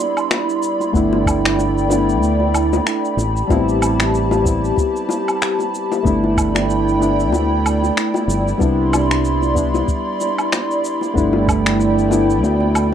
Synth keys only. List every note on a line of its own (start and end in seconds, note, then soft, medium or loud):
0.00 0.96 G3 medium
0.00 0.94 B3 medium
0.00 0.95 D4 medium
0.00 0.96 E4 medium
0.93 1.86 A3 medium
0.93 1.87 B3 medium
0.93 1.87 D4 medium
0.97 1.88 E4 medium
1.88 3.15 A3 medium
1.88 3.16 B3 medium
1.88 3.16 D4 medium
1.88 3.17 E4 medium
3.48 4.41 G3 medium
3.48 4.42 B3 medium
3.48 4.42 C4 medium
3.52 4.43 E4 medium
4.43 6.01 G3 medium
4.43 6.01 B3 medium
4.43 6.02 C4 medium
4.48 6.03 E4 medium
6.03 6.96 A3 medium
6.03 6.97 B3 medium
6.03 6.98 D4 medium
6.03 6.98 E4 medium
6.99 8.56 A3 medium
6.99 8.57 B3 medium
6.99 8.57 D4 medium
7.03 8.58 E4 medium
8.58 9.51 G3 medium
8.58 9.52 B3 medium
8.58 9.53 D4 medium
8.62 9.54 E4 medium
9.54 11.11 G3 medium
9.54 11.12 B3 medium
9.54 11.13 D4 medium
9.58 11.13 E4 medium
11.14 12.07 A3 medium
11.14 12.08 B3 medium
11.14 12.08 D4 medium
11.18 12.09 E4 loud
12.09 12.94 A3 medium
12.09 12.94 B3 medium
12.09 12.94 D4 medium
12.13 12.94 E4 medium